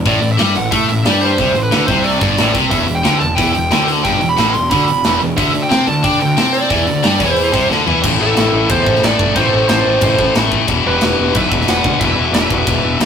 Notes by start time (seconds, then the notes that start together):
0.06 A1 A2 D5, kick, open hi-hat
0.21 A1 A2, open hi-hat
0.32 E5
0.38 G2 G3, snare, open hi-hat
0.55 A1 A2 F#5, open hi-hat
0.71 A2 A3 E5, kick, open hi-hat
0.88 A1 A2 E5, open hi-hat
1.05 G2 G3 D5, snare, open hi-hat
1.21 C5, open hi-hat
1.38 C2 C3, kick, open hi-hat
1.54 A1 A2, open hi-hat
1.63 B4
1.71 D2 D3, snare, open hi-hat
1.87 C2 C3 C5, kick, open hi-hat
2.04 D5, open hi-hat
2.20 G1 G2 D5, kick, open hi-hat
2.38 A1 A2, snare, open hi-hat
2.53 C2 C3, kick, open hi-hat
2.71 E1 E2 E5, kick, open hi-hat
2.86 E1 E2, open hi-hat
2.95 G5
3.04 D2 D3, snare, open hi-hat
3.20 E1 E2 A5, open hi-hat
3.35 E2 E3 G5, kick, open hi-hat
3.53 E1 E2 G5, open hi-hat
3.71 D2 D3, snare, open hi-hat
3.88 open hi-hat
4.04 G1 G2 G5, kick, open hi-hat
4.20 E1 E2, open hi-hat
4.29 B5
4.37 A1 A2, snare, open hi-hat
4.53 E1 E2 C6, open hi-hat
4.70 D2 D3 B5, kick, open hi-hat
4.85 E1 E2 B5, open hi-hat
5.04 E1 E2, snare, open hi-hat
5.21 E1 E2, open hi-hat
5.37 D2 D3 E5, kick, open hi-hat
5.54 D2 D3, open hi-hat
5.63 G5
5.70 C3 C4, snare, open hi-hat
5.86 D2 D3 A5, open hi-hat
6.03 D3 D4 G5, kick, open hi-hat
6.19 D2 D3 G5, open hi-hat
6.37 C3 C4, snare, open hi-hat
6.53 D5, open hi-hat
6.69 E2 E3, kick, open hi-hat
6.87 D2 D3, open hi-hat
7.03 G2 G3, snare, open hi-hat
7.19 E2 E3, kick, open hi-hat
7.31 C5
7.36 open hi-hat
7.53 C2 C3, kick, open hi-hat
7.70 D2 D3, snare
7.86 E2 E3, floor tom
8.03 A1 A2 E3 A3, kick, crash
8.20 A1 E4 A4
8.36 A1, snare, crash
8.53 A1
8.70 E2 A4 C5, kick, crash
8.86 A1, kick
8.95 snare
9.03 A1 A4 D5, snare, crash
9.19 G1, kick
9.35 A1 A2 E3 A3 A4 C5, kick, crash
9.54 A1
9.69 A1 A4 C5, snare, crash
9.85 A1
10.01 A1, kick, crash
10.18 A1, kick
10.35 A1, snare, crash
10.52 kick
10.67 E1 E2 B2 E3, kick, crash
10.86 E1 G4 B4
11.01 E1, snare, crash
11.19 E1
11.35 B1 B4 E5, kick, crash
11.51 E1, kick
11.61 snare
11.67 E1 B4 F#5, snare, crash
11.84 D2, kick
12.00 E1 E2 B2 B4 E5, kick, crash
12.04 E3
12.17 E1
12.33 E1 B4 E5, snare, crash
12.50 E1, kick
12.67 E1, kick, crash
12.83 E1
13.00 D2, snare, crash